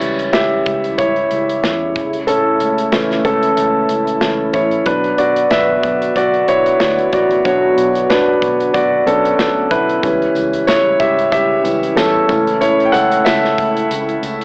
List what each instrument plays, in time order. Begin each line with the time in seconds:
Already playing: analog synth pad C#3 G3 E4, grand piano E3 G3 C#4 E4 C#5
0.02 picked electric bass C#2, closed hi-hat
0.19 closed hi-hat
0.33 picked electric bass C#2, grand piano G4 E5, snare, closed hi-hat
0.66 picked electric bass C#2, kick, closed hi-hat
0.84 closed hi-hat
0.98 picked electric bass C#2, grand piano E4 C#5, kick, closed hi-hat
1.16 closed hi-hat
1.31 picked electric bass C#2, closed hi-hat
1.49 closed hi-hat
1.64 picked electric bass E2, snare, closed hi-hat
1.95 picked electric bass C#2, analog synth pad A3, kick, closed hi-hat
2.13 closed hi-hat
2.27 grand piano C#4 A4, closed hi-hat
2.60 picked electric bass C#2, closed hi-hat
2.78 closed hi-hat
2.92 picked electric bass C#2, grand piano E3 A3 C#4, snare, closed hi-hat
3.11 snare, closed hi-hat
3.25 picked electric bass C#2, grand piano C#4 A4, kick, closed hi-hat
3.43 closed hi-hat
3.57 picked electric bass C#2, closed hi-hat
3.89 picked electric bass C#2, closed hi-hat
4.07 closed hi-hat
4.21 picked electric bass C#2, grand piano E3 A3 C#4, snare, closed hi-hat
4.53 picked electric bass A1, grand piano E4 C#5, kick, closed hi-hat
4.71 closed hi-hat
4.85 picked electric bass B1, analog synth pad D3 B3 F#4, grand piano F#3 B3 D4 B4, kick, closed hi-hat
5.04 closed hi-hat
5.18 picked electric bass B1, grand piano F#4 D5, closed hi-hat
5.36 closed hi-hat
5.51 picked electric bass B1, grand piano B4 E5, snare, closed hi-hat
5.83 picked electric bass B1, kick, closed hi-hat
6.02 closed hi-hat
6.16 picked electric bass B1, grand piano F#4 D5, kick, closed hi-hat
6.34 closed hi-hat
6.48 picked electric bass B1, grand piano E4 C#5, closed hi-hat
6.66 closed hi-hat
6.80 picked electric bass D2, snare, closed hi-hat
6.98 closed hi-hat
7.13 picked electric bass A1, grand piano F#4 D5, kick, closed hi-hat
7.31 closed hi-hat
7.44 picked electric bass B1, grand piano F#3 B3 D4 F#4 C#5, kick, closed hi-hat
7.77 picked electric bass B1, closed hi-hat
7.95 closed hi-hat
8.09 picked electric bass B1, grand piano D4 B4, snare, closed hi-hat
8.42 picked electric bass B1, kick, closed hi-hat
8.60 closed hi-hat
8.74 picked electric bass B1, grand piano F#4 D5, kick, closed hi-hat
9.06 picked electric bass B1, grand piano F#3 B3 C#4 D4 A4, closed hi-hat
9.25 closed hi-hat
9.38 picked electric bass D2, snare, closed hi-hat
9.71 picked electric bass B1, grand piano E4 B4, kick, closed hi-hat
9.89 closed hi-hat
10.02 picked electric bass C#2, analog synth pad C#3 G3 E4, grand piano E3 G3 C#4, kick, closed hi-hat, tambourine
10.22 closed hi-hat
10.35 picked electric bass C#2, closed hi-hat, tambourine
10.54 closed hi-hat
10.67 picked electric bass C#2, grand piano E4 C#5, snare, closed hi-hat, tambourine
11.00 picked electric bass C#2, grand piano G4 E5, kick, closed hi-hat, tambourine
11.19 closed hi-hat
11.32 picked electric bass C#2, grand piano G4 E5, kick, closed hi-hat, tambourine
11.64 picked electric bass C#2, grand piano E3 G3 C#4, closed hi-hat, tambourine
11.83 closed hi-hat
11.96 picked electric bass E2, grand piano C#4 A4, snare, closed hi-hat, tambourine
12.28 picked electric bass C#2, grand piano E3 A3 C#4, analog synth pad A3, kick, closed hi-hat, tambourine
12.47 closed hi-hat
12.61 grand piano E4 C#5, closed hi-hat
12.80 closed hi-hat
12.85 grand piano G5
12.92 picked electric bass C#2, grand piano A4 F#5, closed hi-hat, tambourine
13.12 closed hi-hat
13.25 picked electric bass C#2, grand piano A4 E5, snare, closed hi-hat, tambourine
13.44 snare
13.58 picked electric bass C#2, kick, closed hi-hat
13.77 closed hi-hat
13.91 picked electric bass C#2, closed hi-hat, tambourine
14.09 closed hi-hat
14.23 picked electric bass C#2, closed hi-hat, tambourine
14.41 closed hi-hat